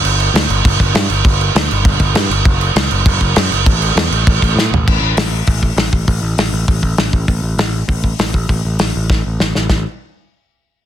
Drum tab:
CC |xxxxxxxx|xxxxxxxx|xxxxxxxx|xxxxxx--|
HH |--------|--------|--------|--------|
SD |--o---o-|--o---o-|--o---o-|--o---o-|
FT |--------|--------|--------|-------o|
BD |----oo--|o---oo--|o---oo--|o---oo--|

CC |x-------|--------|--------|--------|
HH |--o-o-o-|o-o-o-o-|o-o-o-o-|o-o-----|
SD |--o---o-|--o---o-|--o---o-|--o-o-oo|
FT |--------|--------|--------|--------|
BD |o---oo-o|o---oo-o|o---oo-o|o---o---|

CC |--------|
HH |--------|
SD |o-------|
FT |--------|
BD |o-------|